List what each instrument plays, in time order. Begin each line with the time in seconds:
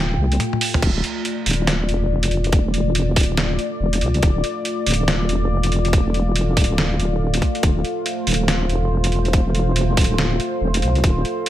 Already playing: wobble bass D1, analog synth pad A3 F4 G5
0.19 wobble bass C2
0.32 closed hi-hat
0.40 closed hi-hat, high tom
0.53 high tom
0.61 open hi-hat
0.74 mid tom
0.82 wobble bass D1, analog synth pad A3 F4 D5, kick, closed hi-hat, crash
1.04 closed hi-hat
1.25 closed hi-hat
1.46 wobble bass D1, open hi-hat
1.51 closed hi-hat
1.53 closed hi-hat
1.67 snare, closed hi-hat
1.89 wobble bass E1, closed hi-hat
2.23 closed hi-hat
2.31 closed hi-hat
2.44 closed hi-hat
2.52 kick, closed hi-hat
2.74 closed hi-hat
2.95 closed hi-hat
3.16 wobble bass D1, kick, open hi-hat
3.21 closed hi-hat
3.23 closed hi-hat
3.37 snare, closed hi-hat
3.59 closed hi-hat
3.80 wobble bass E1
3.93 closed hi-hat
4.01 wobble bass C2, closed hi-hat
4.14 closed hi-hat
4.23 wobble bass D1, kick, closed hi-hat
4.44 closed hi-hat
4.65 closed hi-hat
4.86 wobble bass D1, open hi-hat
4.91 closed hi-hat
4.94 closed hi-hat
5.08 snare, closed hi-hat
5.29 wobble bass E1, closed hi-hat
5.63 closed hi-hat
5.72 closed hi-hat
5.85 closed hi-hat
5.93 kick, closed hi-hat
6.14 closed hi-hat
6.36 closed hi-hat
6.57 wobble bass D1, kick, open hi-hat
6.61 closed hi-hat
6.64 closed hi-hat
6.78 snare, closed hi-hat
6.99 wobble bass D1, closed hi-hat
7.34 closed hi-hat
7.42 kick, closed hi-hat
7.55 closed hi-hat
7.63 wobble bass D1, analog synth pad C5, kick, closed hi-hat
7.85 closed hi-hat
8.06 closed hi-hat
8.27 wobble bass D1, open hi-hat
8.31 closed hi-hat
8.34 closed hi-hat
8.48 snare, closed hi-hat
8.69 wobble bass E1, closed hi-hat
9.04 closed hi-hat
9.12 closed hi-hat
9.25 closed hi-hat
9.33 kick, closed hi-hat
9.55 closed hi-hat
9.76 closed hi-hat
9.97 wobble bass D1, kick, open hi-hat
10.01 closed hi-hat
10.04 closed hi-hat
10.18 snare, closed hi-hat
10.40 closed hi-hat
10.61 wobble bass E1
10.74 closed hi-hat
10.82 wobble bass C2, closed hi-hat
10.95 closed hi-hat
11.04 wobble bass D1, kick, closed hi-hat
11.25 closed hi-hat